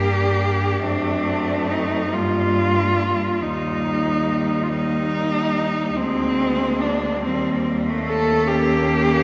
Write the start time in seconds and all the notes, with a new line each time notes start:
Already playing: G2 A#3 D4 G4
0.83 F#2 A3 C4 D4
1.69 D#4
2.13 G2 G3 A#3 F4
3.41 D#2 G3 A#3 D#4
4.63 F4
4.68 G3 A#3 D#4
5.97 D2 G#3 A#3 C4
6.81 D4
7.22 D#2 G3 A#3 C4
7.88 A3
8.08 A4
8.48 A#3 C#4 G4